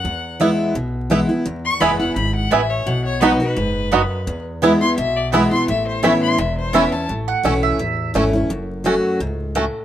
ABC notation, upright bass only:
X:1
M:4/4
L:1/8
Q:"Swing" 1/4=170
K:A
V:1 name="Upright bass" clef=bass
E,,4 B,,,4 | E,,2 F,,,2 G,,,2 A,,,2 | B,,,4 F,,,4 | E,,4 B,,,4 |
A,,,4 E,,,4 | A,,,2 B,,,2 A,,,2 G,,,2 | F,,,4 C,,4 |]